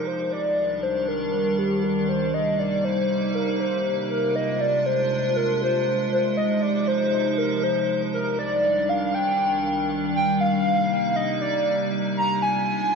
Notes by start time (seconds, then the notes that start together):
0.07 C2 D#3 G3 D4 C5
0.32 D5
0.83 C5
1.08 A#4
1.58 G4
1.84 A#4
2.09 C3 G3 A#3 D#4 C5
2.34 D#5
2.59 D5
2.85 C5
3.35 A#4
3.60 C5
4.10 G#3 D4 F4 A#4
4.36 D#5
4.61 D5
4.86 C5
5.36 A#4
5.62 C5
6.12 F3 D#4 C5
6.37 D#5
6.62 D5
6.88 C5
7.38 A#4
7.63 C5
8.14 C2 D#3 G3 D4 A#4
8.39 D5
8.89 F5
9.14 G5
10.15 C3 A#3 D#4 G5
10.41 F5
11.16 D#5
11.41 D5
12.17 G#3 D4 F4 A#5
12.42 G#5